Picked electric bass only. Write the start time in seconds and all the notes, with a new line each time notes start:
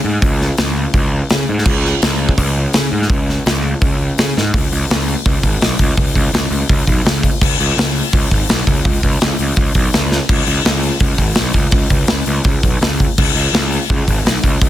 0.04 G#2
0.22 C#2
0.58 C#2
0.94 C#2
1.31 C#3
1.49 G#2
1.66 C#2
2.02 C#2
2.38 C#2
2.74 C#3
2.92 G#2
3.10 C#2
3.46 C#2
3.82 C#2
4.19 C#3
4.37 G#2
4.55 C#2
4.72 C#2
4.90 C#2
5.26 C#2
5.44 G#1
5.62 B1
5.80 C#2
5.98 C#2
6.16 C#2
6.33 C#2
6.50 C#2
6.69 C#2
6.88 B1
7.05 C#2
7.41 C#2
7.59 C#2
7.77 C#2
8.14 C#2
8.31 G#1
8.49 B1
8.67 C#2
8.86 C#2
9.04 C#2
9.22 C#2
9.39 C#2
9.57 C#2
9.75 B1
9.94 C#2
10.29 C#2
10.47 C#2
10.65 C#2
11.01 C#2
11.19 G#1
11.38 B1
11.55 C#2
11.73 C#2
11.91 C#2
12.09 C#2
12.27 C#2
12.45 C#2
12.63 B1
12.81 C#2
13.19 C#2
13.35 C#2
13.53 C#2
13.90 C#2
14.08 G#1
14.25 B1
14.44 C#2
14.62 C#2